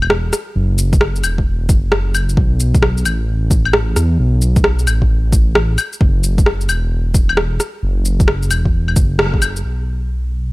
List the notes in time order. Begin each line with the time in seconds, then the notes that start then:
Already playing: E1
0.02 claves
0.10 cross-stick
0.33 cross-stick, shaker
0.56 F#1
0.78 shaker
0.93 kick, shaker
1.01 cross-stick
1.16 shaker
1.24 E1, claves, shaker
1.38 kick
1.69 F#1, kick, shaker
1.92 cross-stick
2.15 claves, shaker
2.29 shaker
2.37 B1, kick
2.60 shaker
2.75 kick, shaker
2.83 cross-stick
2.97 shaker
3.05 A1, claves, shaker
3.51 kick, shaker
3.65 claves
3.73 cross-stick
3.96 E2, cross-stick, shaker
4.19 B1
4.42 shaker
4.56 kick, shaker
4.64 cross-stick
4.79 shaker
4.87 A1, claves, shaker
5.02 kick
5.33 kick, shaker
5.55 cross-stick
5.78 claves, shaker
5.93 shaker
6.01 F#1, kick
6.23 shaker
6.38 kick, shaker
6.46 cross-stick
6.61 shaker
6.69 E1, claves, shaker
7.14 kick, shaker
7.29 claves
7.37 cross-stick
7.60 cross-stick, shaker
7.83 F#1
8.05 shaker
8.20 kick, shaker
8.28 cross-stick
8.43 shaker
8.51 E1, claves, shaker
8.65 kick
8.88 claves
8.96 F#1, kick, shaker
9.19 cross-stick
9.34 kick
9.42 claves, shaker
9.56 shaker
9.65 B1